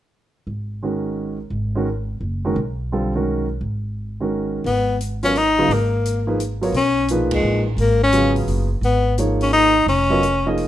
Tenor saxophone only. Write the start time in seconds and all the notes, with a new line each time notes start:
4.66 B3
5.24 C#4
5.38 D#4
5.73 A#3
6.76 C#4
7.34 G#3
7.80 A#3
8.04 C#4
8.85 B3
9.43 C#4
9.53 D#4
9.89 C#4